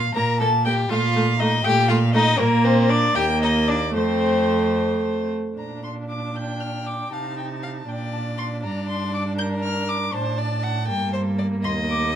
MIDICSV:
0, 0, Header, 1, 5, 480
1, 0, Start_track
1, 0, Key_signature, -2, "major"
1, 0, Tempo, 500835
1, 862, Time_signature, 6, 3, 24, 8
1, 2780, Tempo, 537153
1, 5180, Tempo, 514139
1, 6620, Tempo, 500417
1, 11442, End_track
2, 0, Start_track
2, 0, Title_t, "Violin"
2, 0, Program_c, 0, 40
2, 0, Note_on_c, 0, 77, 113
2, 133, Note_off_c, 0, 77, 0
2, 138, Note_on_c, 0, 82, 102
2, 375, Note_off_c, 0, 82, 0
2, 382, Note_on_c, 0, 81, 106
2, 616, Note_off_c, 0, 81, 0
2, 623, Note_on_c, 0, 79, 109
2, 699, Note_off_c, 0, 79, 0
2, 865, Note_on_c, 0, 77, 107
2, 1339, Note_on_c, 0, 75, 121
2, 1353, Note_off_c, 0, 77, 0
2, 1574, Note_on_c, 0, 79, 121
2, 1588, Note_off_c, 0, 75, 0
2, 1806, Note_on_c, 0, 77, 107
2, 1820, Note_off_c, 0, 79, 0
2, 2044, Note_off_c, 0, 77, 0
2, 2050, Note_on_c, 0, 75, 124
2, 2296, Note_on_c, 0, 70, 122
2, 2310, Note_off_c, 0, 75, 0
2, 2533, Note_on_c, 0, 72, 114
2, 2548, Note_off_c, 0, 70, 0
2, 2776, Note_on_c, 0, 74, 127
2, 2789, Note_off_c, 0, 72, 0
2, 3006, Note_on_c, 0, 79, 120
2, 3019, Note_off_c, 0, 74, 0
2, 3242, Note_off_c, 0, 79, 0
2, 3246, Note_on_c, 0, 75, 110
2, 3475, Note_on_c, 0, 74, 120
2, 3488, Note_off_c, 0, 75, 0
2, 3716, Note_off_c, 0, 74, 0
2, 3725, Note_on_c, 0, 72, 107
2, 4920, Note_off_c, 0, 72, 0
2, 5175, Note_on_c, 0, 82, 58
2, 5402, Note_off_c, 0, 82, 0
2, 5413, Note_on_c, 0, 84, 51
2, 5488, Note_off_c, 0, 84, 0
2, 5653, Note_on_c, 0, 86, 63
2, 5900, Note_on_c, 0, 91, 70
2, 5914, Note_off_c, 0, 86, 0
2, 6129, Note_on_c, 0, 89, 60
2, 6143, Note_off_c, 0, 91, 0
2, 6375, Note_on_c, 0, 86, 73
2, 6389, Note_off_c, 0, 89, 0
2, 6608, Note_off_c, 0, 86, 0
2, 6614, Note_on_c, 0, 81, 65
2, 7341, Note_on_c, 0, 79, 64
2, 7356, Note_off_c, 0, 81, 0
2, 7574, Note_off_c, 0, 79, 0
2, 7580, Note_on_c, 0, 81, 67
2, 7657, Note_off_c, 0, 81, 0
2, 7818, Note_on_c, 0, 84, 84
2, 7894, Note_off_c, 0, 84, 0
2, 8064, Note_on_c, 0, 82, 77
2, 8302, Note_off_c, 0, 82, 0
2, 8307, Note_on_c, 0, 84, 79
2, 8544, Note_off_c, 0, 84, 0
2, 8549, Note_on_c, 0, 86, 83
2, 8625, Note_off_c, 0, 86, 0
2, 8782, Note_on_c, 0, 91, 97
2, 8859, Note_off_c, 0, 91, 0
2, 9021, Note_on_c, 0, 89, 93
2, 9266, Note_on_c, 0, 86, 94
2, 9280, Note_off_c, 0, 89, 0
2, 9502, Note_on_c, 0, 81, 94
2, 9517, Note_off_c, 0, 86, 0
2, 10694, Note_off_c, 0, 81, 0
2, 10947, Note_on_c, 0, 84, 94
2, 11023, Note_off_c, 0, 84, 0
2, 11188, Note_on_c, 0, 86, 94
2, 11419, Note_off_c, 0, 86, 0
2, 11442, End_track
3, 0, Start_track
3, 0, Title_t, "Violin"
3, 0, Program_c, 1, 40
3, 145, Note_on_c, 1, 70, 96
3, 378, Note_off_c, 1, 70, 0
3, 385, Note_on_c, 1, 69, 91
3, 461, Note_off_c, 1, 69, 0
3, 620, Note_on_c, 1, 67, 92
3, 859, Note_on_c, 1, 65, 97
3, 873, Note_off_c, 1, 67, 0
3, 1327, Note_off_c, 1, 65, 0
3, 1333, Note_on_c, 1, 63, 95
3, 1570, Note_off_c, 1, 63, 0
3, 1574, Note_on_c, 1, 67, 121
3, 1809, Note_off_c, 1, 67, 0
3, 1813, Note_on_c, 1, 65, 88
3, 1890, Note_off_c, 1, 65, 0
3, 2054, Note_on_c, 1, 63, 109
3, 2282, Note_on_c, 1, 58, 104
3, 2297, Note_off_c, 1, 63, 0
3, 2532, Note_on_c, 1, 60, 105
3, 2546, Note_off_c, 1, 58, 0
3, 2775, Note_on_c, 1, 62, 105
3, 2789, Note_off_c, 1, 60, 0
3, 3005, Note_off_c, 1, 62, 0
3, 3010, Note_on_c, 1, 67, 113
3, 3082, Note_off_c, 1, 67, 0
3, 3253, Note_on_c, 1, 63, 97
3, 3324, Note_off_c, 1, 63, 0
3, 3481, Note_on_c, 1, 62, 96
3, 3552, Note_off_c, 1, 62, 0
3, 3720, Note_on_c, 1, 60, 96
3, 4918, Note_off_c, 1, 60, 0
3, 5905, Note_on_c, 1, 79, 60
3, 6620, Note_on_c, 1, 77, 50
3, 6634, Note_off_c, 1, 79, 0
3, 6852, Note_off_c, 1, 77, 0
3, 6858, Note_on_c, 1, 79, 54
3, 6934, Note_off_c, 1, 79, 0
3, 7102, Note_on_c, 1, 77, 58
3, 7179, Note_off_c, 1, 77, 0
3, 7343, Note_on_c, 1, 74, 66
3, 8053, Note_off_c, 1, 74, 0
3, 8063, Note_on_c, 1, 74, 69
3, 8772, Note_off_c, 1, 74, 0
3, 8779, Note_on_c, 1, 70, 75
3, 9489, Note_off_c, 1, 70, 0
3, 9507, Note_on_c, 1, 72, 75
3, 9744, Note_on_c, 1, 74, 73
3, 9758, Note_off_c, 1, 72, 0
3, 9982, Note_on_c, 1, 78, 78
3, 9996, Note_off_c, 1, 74, 0
3, 10211, Note_off_c, 1, 78, 0
3, 10217, Note_on_c, 1, 79, 85
3, 10451, Note_off_c, 1, 79, 0
3, 10458, Note_on_c, 1, 72, 74
3, 10535, Note_off_c, 1, 72, 0
3, 10704, Note_on_c, 1, 74, 66
3, 10781, Note_off_c, 1, 74, 0
3, 10945, Note_on_c, 1, 75, 91
3, 11442, Note_off_c, 1, 75, 0
3, 11442, End_track
4, 0, Start_track
4, 0, Title_t, "Viola"
4, 0, Program_c, 2, 41
4, 153, Note_on_c, 2, 58, 74
4, 229, Note_off_c, 2, 58, 0
4, 387, Note_on_c, 2, 58, 71
4, 464, Note_off_c, 2, 58, 0
4, 628, Note_on_c, 2, 58, 68
4, 705, Note_off_c, 2, 58, 0
4, 865, Note_on_c, 2, 57, 71
4, 941, Note_off_c, 2, 57, 0
4, 1109, Note_on_c, 2, 57, 76
4, 1186, Note_off_c, 2, 57, 0
4, 1352, Note_on_c, 2, 57, 77
4, 1429, Note_off_c, 2, 57, 0
4, 1585, Note_on_c, 2, 57, 73
4, 1661, Note_off_c, 2, 57, 0
4, 1812, Note_on_c, 2, 57, 80
4, 1889, Note_off_c, 2, 57, 0
4, 2052, Note_on_c, 2, 57, 82
4, 2129, Note_off_c, 2, 57, 0
4, 2287, Note_on_c, 2, 58, 94
4, 2972, Note_off_c, 2, 58, 0
4, 3011, Note_on_c, 2, 58, 92
4, 3706, Note_off_c, 2, 58, 0
4, 3717, Note_on_c, 2, 57, 81
4, 4968, Note_off_c, 2, 57, 0
4, 5171, Note_on_c, 2, 62, 46
4, 6577, Note_off_c, 2, 62, 0
4, 6614, Note_on_c, 2, 63, 45
4, 7305, Note_off_c, 2, 63, 0
4, 7345, Note_on_c, 2, 62, 55
4, 10178, Note_off_c, 2, 62, 0
4, 10215, Note_on_c, 2, 58, 73
4, 11442, Note_off_c, 2, 58, 0
4, 11442, End_track
5, 0, Start_track
5, 0, Title_t, "Cello"
5, 0, Program_c, 3, 42
5, 143, Note_on_c, 3, 46, 87
5, 777, Note_off_c, 3, 46, 0
5, 861, Note_on_c, 3, 46, 92
5, 1495, Note_off_c, 3, 46, 0
5, 1578, Note_on_c, 3, 46, 102
5, 2208, Note_off_c, 3, 46, 0
5, 2292, Note_on_c, 3, 46, 94
5, 2974, Note_off_c, 3, 46, 0
5, 3008, Note_on_c, 3, 39, 97
5, 3717, Note_on_c, 3, 41, 82
5, 3730, Note_off_c, 3, 39, 0
5, 4994, Note_off_c, 3, 41, 0
5, 5173, Note_on_c, 3, 46, 46
5, 6578, Note_off_c, 3, 46, 0
5, 6615, Note_on_c, 3, 48, 51
5, 7330, Note_off_c, 3, 48, 0
5, 7342, Note_on_c, 3, 46, 56
5, 8061, Note_on_c, 3, 43, 63
5, 8076, Note_off_c, 3, 46, 0
5, 9499, Note_off_c, 3, 43, 0
5, 9504, Note_on_c, 3, 45, 69
5, 10215, Note_on_c, 3, 43, 78
5, 10229, Note_off_c, 3, 45, 0
5, 10941, Note_on_c, 3, 39, 83
5, 10955, Note_off_c, 3, 43, 0
5, 11442, Note_off_c, 3, 39, 0
5, 11442, End_track
0, 0, End_of_file